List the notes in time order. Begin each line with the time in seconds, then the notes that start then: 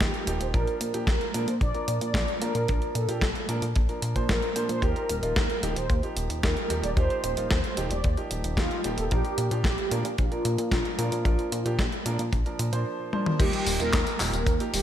0.00 D#2 F3 A#3 D#4 G4, kick, snare, closed hi-hat
0.14 closed hi-hat
0.27 D#1 F3 A#3 D#4 G4, closed hi-hat
0.41 D#1 C5, closed hi-hat
0.54 A#1 F3 A#3 D4 A#4, kick, closed hi-hat
0.67 closed hi-hat
0.81 A#2, closed hi-hat
0.94 A#2 F3 A#3 D4 G4, closed hi-hat
1.07 A#1 A#4, kick, snare, closed hi-hat
1.21 closed hi-hat
1.34 A#2 F3 A#3 D4 A#4, closed hi-hat
1.48 A#2 C5, closed hi-hat
1.61 A#1 D5, kick, closed hi-hat
1.74 F3 A#3 D4 A#4, closed hi-hat
1.88 A#2, closed hi-hat
2.01 A#2 D5, closed hi-hat
2.14 A#1 F3 A#3 D4 A#4, kick, snare, closed hi-hat
2.28 closed hi-hat
2.41 A#2 F3 A#3 D4 A#4, closed hi-hat
2.55 A#2, closed hi-hat
2.68 A#1 F3 A#3 D4 A#4, kick, closed hi-hat
2.82 closed hi-hat
2.95 A#2 A4, closed hi-hat
3.09 A#2 F3 A#3 D4 G4, closed hi-hat
3.21 A#1, kick, snare, closed hi-hat
3.35 closed hi-hat
3.49 A#2 F3 A#3 D4 A#4, closed hi-hat
3.62 A#2, closed hi-hat
3.76 A#1, kick, closed hi-hat
3.89 F3 A#3 D4 A#4, closed hi-hat
4.02 A#2, closed hi-hat
4.16 A#2 F3 A#3 D4 C5, kick, closed hi-hat
4.29 A#1 A#4, kick, snare, closed hi-hat
4.43 closed hi-hat
4.56 A#2 F3 A#3 D4 C5, closed hi-hat
4.69 A#2 C5, closed hi-hat
4.82 D#2 F3 A#3 D#4 G4 A#4, kick, closed hi-hat
4.96 closed hi-hat
5.09 D#1, closed hi-hat
5.23 D#1 F3 A#3 D#4 F4, closed hi-hat
5.36 D#2 A#4, kick, snare, closed hi-hat
5.50 closed hi-hat
5.63 D#1 F3 A#3 D#4 G4, closed hi-hat
5.76 D#1 C5, closed hi-hat
5.90 D#2, kick, closed hi-hat
6.03 F3 A#3 D#4 G4, closed hi-hat
6.16 D#1, closed hi-hat
6.30 D#1, closed hi-hat
6.43 D#2 F3 A#3 D#4 G4 A#4, kick, snare, closed hi-hat
6.57 closed hi-hat
6.70 D#1 F3 A#3 D#4 G4, closed hi-hat
6.83 D#1 D5, closed hi-hat
6.97 D#2 F3 A#3 D#4 G4 C5, kick, closed hi-hat
7.10 closed hi-hat
7.24 D#1, closed hi-hat
7.37 D#1 F3 A#3 D#4 F4, closed hi-hat
7.50 D#2 C5, kick, snare, closed hi-hat
7.64 closed hi-hat
7.77 D#1 F3 A#3 D#4 G4, closed hi-hat
7.91 D#1 D5, closed hi-hat
8.04 D#2, kick, closed hi-hat
8.17 F3 A#3 D#4 G4, closed hi-hat
8.31 D#1, closed hi-hat
8.44 D#1, closed hi-hat
8.57 D#2 F3 A#3 D#4 F4 G4, kick, snare, closed hi-hat
8.71 closed hi-hat
8.84 D#1 F3 A#3 D#4 G4, closed hi-hat
8.98 D#1 A4, closed hi-hat
9.11 A#1 F3 A#3 D4 G4 A#4, kick, closed hi-hat
9.25 closed hi-hat
9.38 A#2, closed hi-hat
9.51 A#2 F3 A#3 D4 G4, closed hi-hat
9.64 A#1 G4, kick, snare, closed hi-hat
9.78 closed hi-hat
9.91 A#2 F3 A#3 D4 A#4, closed hi-hat
10.05 A#2, closed hi-hat
10.18 A#1 F4, kick, closed hi-hat
10.32 F3 A#3 D4 A#4, closed hi-hat
10.45 A#2, closed hi-hat
10.58 A#2, closed hi-hat
10.71 A#1 F3 A#3 D4 A#4, kick, snare, closed hi-hat
10.85 closed hi-hat
10.99 A#2 F3 A#3 D4 A#4, closed hi-hat
11.12 A#2, closed hi-hat
11.25 A#1 F3 A#3 D4 A#4, kick, closed hi-hat
11.39 closed hi-hat
11.52 A#2, closed hi-hat
11.66 A#2 F3 A#3 D4 G4, closed hi-hat
11.79 A#1, kick, snare, closed hi-hat
11.92 closed hi-hat
12.06 A#2 F3 A#3 D4 A#4, closed hi-hat
12.19 A#2, closed hi-hat
12.33 A#1, kick, closed hi-hat
12.46 F3 A#3 D4 A#4, closed hi-hat
12.59 A#2, closed hi-hat
12.73 A#2 F3 A#3 D4 C5, closed hi-hat
13.13 F3 A#3 D4 C5, high tom
13.26 mid tom
13.40 D#2 F3 G3 A#3 D#4 G4, kick, closed hi-hat, tambourine, crash
13.53 closed hi-hat, tambourine
13.66 D#1, open hi-hat, tambourine
13.80 D#1 F3 A#3 D#4 F4 A#4, closed hi-hat, tambourine
13.93 D#2, kick, snare, clap, closed hi-hat, tambourine
14.07 closed hi-hat, tambourine
14.20 D#1 F3 A#3 D#4 G4 A#4, clap, open hi-hat, tambourine
14.33 D#1, closed hi-hat, tambourine
14.46 D#2, kick, closed hi-hat, tambourine
14.60 F3 A#3 D#4 G4, closed hi-hat
14.74 D#1 G3 G4, open hi-hat, tambourine